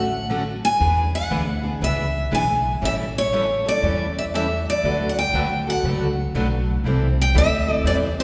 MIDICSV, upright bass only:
0, 0, Header, 1, 2, 480
1, 0, Start_track
1, 0, Tempo, 502934
1, 772, Time_signature, 4, 2, 24, 8
1, 7859, End_track
2, 0, Start_track
2, 0, Title_t, "Upright bass"
2, 0, Program_c, 0, 32
2, 0, Note_on_c, 0, 33, 78
2, 577, Note_off_c, 0, 33, 0
2, 766, Note_on_c, 0, 40, 77
2, 1153, Note_off_c, 0, 40, 0
2, 1251, Note_on_c, 0, 38, 75
2, 1661, Note_off_c, 0, 38, 0
2, 1732, Note_on_c, 0, 37, 76
2, 2141, Note_off_c, 0, 37, 0
2, 2212, Note_on_c, 0, 35, 79
2, 2621, Note_off_c, 0, 35, 0
2, 2692, Note_on_c, 0, 33, 87
2, 3462, Note_off_c, 0, 33, 0
2, 3650, Note_on_c, 0, 40, 76
2, 4420, Note_off_c, 0, 40, 0
2, 4615, Note_on_c, 0, 38, 85
2, 4999, Note_off_c, 0, 38, 0
2, 5091, Note_on_c, 0, 38, 77
2, 5500, Note_off_c, 0, 38, 0
2, 5568, Note_on_c, 0, 37, 76
2, 5978, Note_off_c, 0, 37, 0
2, 6053, Note_on_c, 0, 35, 74
2, 6461, Note_off_c, 0, 35, 0
2, 6528, Note_on_c, 0, 36, 82
2, 6995, Note_off_c, 0, 36, 0
2, 7013, Note_on_c, 0, 38, 83
2, 7475, Note_off_c, 0, 38, 0
2, 7480, Note_on_c, 0, 40, 84
2, 7859, Note_off_c, 0, 40, 0
2, 7859, End_track
0, 0, End_of_file